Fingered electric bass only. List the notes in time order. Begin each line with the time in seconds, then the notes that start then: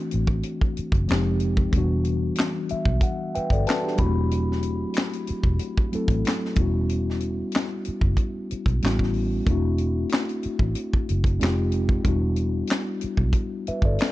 0.14 A1
0.79 muted fingered electric bass stroke
0.93 F#1
1.11 F1
1.74 E1
2.72 muted fingered electric bass stroke
2.87 B1
3.37 muted fingered electric bass stroke
3.51 G1
4.00 E1
5.30 muted fingered electric bass stroke
5.45 E1
5.95 muted fingered electric bass stroke
6.09 A1
6.58 E1
7.88 muted fingered electric bass stroke
8.03 F#1
8.52 muted fingered electric bass stroke
8.67 B1
8.84 A1
9.48 E1
10.46 muted fingered electric bass stroke
10.60 A1
10.95 muted fingered electric bass stroke
11.10 F#1
11.42 F1
12.06 E1
13.04 muted fingered electric bass stroke
13.19 B1
13.69 muted fingered electric bass stroke
13.83 G1